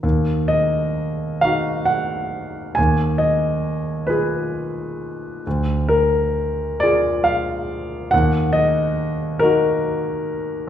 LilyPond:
\new Staff \with { instrumentName = "Grand piano" } { \time 12/8 \key ees \minor \tempo 4. = 45 << { r8 ees''4 f''8 ges''4 aes''8 ees''4 ces''4. | r8 bes'4 d''8 f''4 ges''8 ees''4 bes'4. | } \\ { ees,4. <ees' ges'>4. ees,4. <f' aes'>4. | d,4. <f' aes'>4. ees,4. <ees' ges'>4. | } >> }